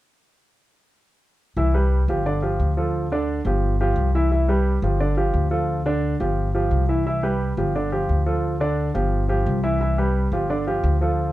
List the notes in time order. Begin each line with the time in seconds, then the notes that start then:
1.57 C2 E3 E4 E5
1.74 G3 G4 B4
2.08 G1 F3 F4 G4
2.26 D3 D4 D5
2.42 F3 F4 G4
2.59 D2
2.77 F3 F4 A4
3.12 D3 D4 D5
3.45 G1 F3 F4 G4
3.81 F3 F4 G4
3.96 C2
4.15 E3 E4 E5
4.31 E3 E4 E5
4.48 G3 G4 B4
4.82 G1 F3 F4 G4
5.00 D3 D4 D5
5.17 F3 F4 G4
5.34 D2
5.51 F3 F4 A4
5.86 D3 D4 D5
6.20 G1 F3 F4 G4
6.55 F3 F4 G4
6.71 C2
6.89 E3 E4 E5
7.06 E3 E4 E5
7.23 G3 G4 B4
7.57 G1 F3 F4 G4
7.75 D3 D4 D5
7.92 F3 F4 G4
8.09 D2
8.26 F3 F4 A4
8.60 D3 D4 D5
8.94 G1 F3 F4 G4
9.29 F3 F4 G4
9.46 C2
9.63 E3 E4 E5
9.81 E3 E4 E5
9.98 G3 G4 B4
10.32 G1 F3 F4 G4
10.50 D3 D4 D5
10.67 F3 F4 G4
10.84 D2
11.01 F3 F4 A4